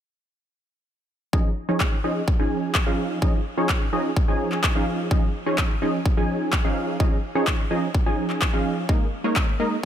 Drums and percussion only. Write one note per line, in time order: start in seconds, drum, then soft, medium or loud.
1.33 kick loud
1.80 kick loud
1.80 clap loud
2.28 kick loud
2.75 kick loud
2.75 clap loud
3.22 kick loud
3.69 kick loud
3.69 clap loud
4.17 kick loud
4.52 clap soft
4.64 kick loud
4.64 clap loud
5.11 kick loud
5.58 kick loud
5.58 clap loud
6.06 kick loud
6.53 kick loud
6.53 clap loud
7.00 kick loud
7.47 kick loud
7.47 clap loud
7.95 kick loud
8.30 clap soft
8.42 kick loud
8.42 clap loud
8.89 kick loud
9.36 kick loud
9.36 clap loud